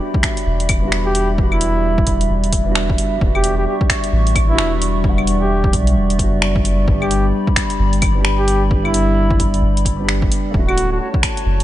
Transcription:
Already playing: upright piano G3 B3 D4 F#4, ambient pad G3 D5 E5 B5
0.14 kick
0.23 finger snap, kick, closed hi-hat
0.37 closed hi-hat
0.46 sub bass E1
0.60 closed hi-hat
0.69 kick, closed hi-hat, claves
0.80 upright piano G3 B3
0.85 upright piano D4 F#4
0.92 finger snap
1.06 muted trumpet G4
1.15 closed hi-hat
1.35 upright piano G3 B3, kick
1.40 upright piano D4 F#4
1.52 muted trumpet E4, claves
1.61 closed hi-hat
1.98 kick
2.07 kick, closed hi-hat
2.21 closed hi-hat
2.30 sub bass E1
2.44 closed hi-hat
2.53 kick, closed hi-hat
2.64 upright piano G3 B3
2.69 upright piano D4 F#4
2.75 finger snap
2.90 kick
2.98 closed hi-hat
3.18 sub bass E1, upright piano G3 B3, ambient pad C#6, kick
3.23 upright piano D4 F#4
3.35 muted trumpet G4, claves
3.44 closed hi-hat
3.58 muted trumpet G4
3.67 muted trumpet G4
3.81 kick
3.90 finger snap, kick, closed hi-hat
4.04 closed hi-hat
4.13 sub bass A1
4.27 closed hi-hat
4.35 kick, closed hi-hat, claves
4.46 upright piano G3 B3, muted trumpet E4
4.52 upright piano D4 F#4
4.58 sub bass E1, finger snap
4.82 closed hi-hat
5.01 upright piano G3 B3, kick
5.07 upright piano D4 F#5
5.18 claves
5.27 closed hi-hat
5.41 muted trumpet G4
5.64 kick
5.73 sub bass B1, kick, closed hi-hat
5.87 closed hi-hat
5.95 sub bass E1
6.10 closed hi-hat
6.16 sub bass F#1, upright piano G3 B3, kick, closed hi-hat
6.21 upright piano D4 F#4
6.42 finger snap
6.56 kick
6.65 closed hi-hat
6.85 sub bass G1, upright piano G3 B3, ambient pad B5, kick
6.90 upright piano D4 G4
7.02 muted trumpet G4, claves
7.11 closed hi-hat
7.47 kick
7.56 finger snap, kick, closed hi-hat
7.70 closed hi-hat
7.79 sub bass G1
7.93 closed hi-hat
8.02 kick, closed hi-hat, claves
8.12 upright piano G3 B3
8.18 upright piano D4 G4
8.25 finger snap
8.38 muted trumpet G4
8.48 closed hi-hat
8.67 upright piano G3 B3, kick
8.73 upright piano D4 G4
8.85 muted trumpet E4, claves
8.94 closed hi-hat
9.31 kick
9.40 kick, closed hi-hat
9.54 closed hi-hat
9.62 sub bass G1
9.77 closed hi-hat
9.85 kick, closed hi-hat
9.96 upright piano G3 B3
10.02 upright piano D4 G4
10.09 finger snap
10.22 kick
10.32 closed hi-hat
10.51 sub bass D1, upright piano A3 C#4, ambient pad F#4 C#5 A5, kick
10.56 upright piano E4 F#4
10.68 muted trumpet F#4, claves
10.78 closed hi-hat
10.92 muted trumpet F#4
11.00 muted trumpet F#4
11.14 kick
11.23 finger snap, kick, closed hi-hat
11.37 closed hi-hat
11.46 sub bass F#1
11.60 closed hi-hat

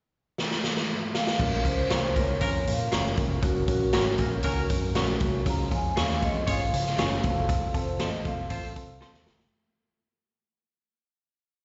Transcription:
0.38 snare
0.51 snare
0.64 snare
0.76 snare
1.15 vibraphone F5, snare
1.27 snare
1.39 fingered electric bass A#1, tonewheel organ F3 A#3 C#4 F4, upright piano C#4 F4 A#4, kick, crash, muted conga
1.65 fingered electric bass C#2, upright piano C#4 F4 A#4, vibraphone C5, kick, closed hi-hat, muted conga
1.90 fingered electric bass C2, upright piano C#4 F4 A#4, clean electric guitar F4 A#4 C#5, snare, closed hi-hat, high conga
2.14 fingered electric bass C#2, horn section C#4 F4 A#4, upright piano C#4 F4 A#4, vibraphone C#5, kick, closed hi-hat
2.40 fingered electric bass F2, horn section C#4 F4 A#4, upright piano C#4 F4, kick, closed hi-hat
2.66 fingered electric bass A#2, upright piano C#4 F4 A#4, closed hi-hat, muted conga, low conga
2.70 vibraphone F5
2.92 fingered electric bass F#1, upright piano C#4 F4 A#4, clean electric guitar F4 A#4 C#5, snare, closed hi-hat, high conga
3.06 high conga
3.16 fingered electric bass F1, upright piano C#4 F4 A#4, kick, closed hi-hat, high conga
3.42 fingered electric bass F#1, tonewheel organ F#3 F#4, upright piano C#4 F#4 A#4, kick, closed hi-hat, muted conga
3.68 fingered electric bass A#1, upright piano C#4 F#4 A#4, kick, closed hi-hat, muted conga
3.93 fingered electric bass G#1, upright piano C#4 F#4 A#4, clean electric guitar F#4 A#4 C#5, snare, closed hi-hat, high conga
4.06 snare
4.18 fingered electric bass A#1, upright piano C#4 F#4 A#4, horn section C#4 F#4 A#4, kick, closed hi-hat, low conga
4.43 fingered electric bass C#2, horn section C#4 F#4 A#4, upright piano C#4 F#4 A#4, kick, closed hi-hat
4.70 fingered electric bass F#2, upright piano C#4 F#4 A#4, kick, closed hi-hat, muted conga
4.95 fingered electric bass A#1, upright piano C#4 F#4 A#4, clean electric guitar F#4 A#4 C#5, snare, closed hi-hat, high conga
5.09 high conga
5.20 fingered electric bass C2, upright piano C#4 F#4 A#4, kick, closed hi-hat, high conga
5.45 fingered electric bass C#2, tonewheel organ F3 G#3 F4, upright piano C#4 F4 G#4, kick, closed hi-hat, muted conga
5.50 vibraphone A#5
5.71 fingered electric bass F2, upright piano C#4 F4 G#4, kick, closed hi-hat, muted conga
5.75 vibraphone G#5
5.96 fingered electric bass D#2, upright piano C#4 F4 G#4, clean electric guitar F4 G#4 C#5, vibraphone F5, snare, closed hi-hat, high conga
6.10 snare
6.22 upright piano C#4 F4 G#4, horn section F4 G#4 C#5, vibraphone D#5, kick, closed hi-hat
6.34 fingered electric bass F2
6.47 fingered electric bass G#1, upright piano C#4 F4 G#4, horn section F4 G#4 C#5, vibraphone F5, kick, closed hi-hat
6.73 fingered electric bass C#3, upright piano C#4 F4 G#4, closed hi-hat, muted conga, low conga
6.86 snare
6.98 fingered electric bass F#1, upright piano C#4 F4 G#4, clean electric guitar F4 G#4 C#5, snare, closed hi-hat, high conga
7.12 high conga
7.22 fingered electric bass F1, tonewheel organ F3 A3 C4 F4, upright piano C4 F4 F#4, vibraphone F5, kick, closed hi-hat, high conga
7.30 upright piano A4
7.49 kick, closed hi-hat, muted conga
7.74 fingered electric bass F1, upright piano C4 F4 A4, vibraphone C5, kick, closed hi-hat, muted conga
7.99 fingered electric bass A1, upright piano C4 F4 A4, clean electric guitar F4 A4 C5, snare, closed hi-hat, high conga
8.25 fingered electric bass F1, upright piano C4 F4 A4, horn section F4 A4 C5, vibraphone F5, kick, closed hi-hat, low conga
8.50 fingered electric bass A1, upright piano C4 F4 A4, horn section F4 A4 C5, kick, closed hi-hat
8.76 upright piano C4 F4 A4, kick, closed hi-hat, muted conga
8.88 fingered electric bass C2
9.01 upright piano C4 F4 A4, clean electric guitar F4 A4 C5, snare, high conga
9.13 fingered electric bass D#2, snare, high conga
9.26 fingered electric bass F1, upright piano C4 F4 A4, snare, high conga
9.38 fingered electric bass F#1, snare

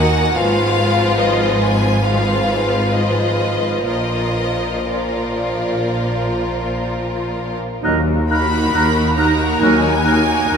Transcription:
Already playing: double bass section D#2, cello section D#3, viola section A#3 D#4, violin section F#4 A#4 F#5
0.36 double bass section G#1, cello section G#2, viola section F3 F4, violin section F4 B4 F5
1.20 violin section D#5
1.63 violin section G#5
2.04 viola section F3 F4, violin section F4 B4 F5
2.92 violin section D#5
3.86 double bass section A#1, cello section A#2, viola section F3 F4, violin section F4 A#4 D#5
4.88 viola section F3 F4, violin section F4 A#4 D5
7.82 cello section D#2, double bass section D#2, trombone section D#3 F#3, french horn section A#3 D#4, clarinet D#4, oboe A#4, flute F#6
8.30 viola section A#3 D#4, clarinet D#4, violin section F#4 A#4 B5, oboe A#4, flute F#6
8.72 double bass section D#2, cello section D#2, clarinet D#4, oboe A#4, flute F#6
9.17 viola section A#3 D#4, clarinet D#4, violin section F#4 A#4 A#5, oboe A#4, flute F#6
9.60 cello section D#2, double bass section D#2, trombone section D#3 F#3, french horn section A#3 D#4, clarinet D#4, oboe A#4, violin section G#5, flute F#6
10.05 viola section A#3 D#4, clarinet D#4, violin section F#4 A#4, oboe A#4, flute F#6
10.49 double bass section D#2, cello section D#2, clarinet D#4, oboe A#4, flute F#6

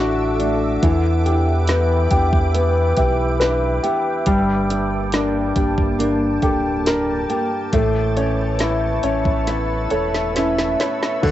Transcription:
Already playing: sub bass A1, grand piano D3 A3 D4 F#4, nylon-string guitar D3 A3 D4 E4, ambient pad A4 E5 F#5 D6
0.39 nylon-string guitar A3, grand piano D4, closed hi-hat
0.82 nylon-string guitar E2, sub bass E2, grand piano E3, ambient pad B4 E5 G5, kick, closed hi-hat
1.25 nylon-string guitar D4, grand piano G4, closed hi-hat
1.67 grand piano B3, nylon-string guitar B3, snare, closed hi-hat
2.11 sub bass E2, nylon-string guitar D4, grand piano G4, kick, closed hi-hat
2.33 kick
2.54 grand piano B3, nylon-string guitar B3, closed hi-hat
2.97 sub bass B1, nylon-string guitar E4, grand piano G4, kick, closed hi-hat
3.40 nylon-string guitar D4, grand piano B4, snare, closed hi-hat
3.83 nylon-string guitar B3, grand piano G4, closed hi-hat
4.26 sub bass G1, nylon-string guitar G2, grand piano G3, ambient pad A#3 A5, kick, closed hi-hat
4.70 nylon-string guitar D4, grand piano G4, closed hi-hat
5.12 nylon-string guitar A#3, grand piano D4, snare, closed hi-hat
5.56 sub bass G1, nylon-string guitar D4, grand piano G4, kick, closed hi-hat
5.78 kick
5.99 nylon-string guitar A#3, grand piano D4, closed hi-hat
6.42 sub bass D1, grand piano G4, nylon-string guitar A4, kick, closed hi-hat
6.86 nylon-string guitar D4, grand piano A#4, snare, closed hi-hat
7.29 nylon-string guitar A#3, grand piano G4, closed hi-hat
7.73 sub bass A1, nylon-string guitar A2, grand piano A3, ambient pad B4 E5 A5 C#6, kick, closed hi-hat
8.16 nylon-string guitar C#4, grand piano C#5, closed hi-hat
8.59 nylon-string guitar B3, grand piano E4, snare, closed hi-hat
9.03 sub bass A1, nylon-string guitar C#4, grand piano C#5, closed hi-hat
9.25 kick
9.47 nylon-string guitar B3, grand piano E4, snare, closed hi-hat
9.90 sub bass E1, nylon-string guitar A4, grand piano C#5, closed hi-hat
10.14 snare
10.35 nylon-string guitar C#4, grand piano E4, snare, closed hi-hat
10.58 snare
10.80 nylon-string guitar B3, grand piano C#5, snare, closed hi-hat
11.03 snare
11.23 sub bass D2, grand piano D3, nylon-string guitar D3, kick, crash

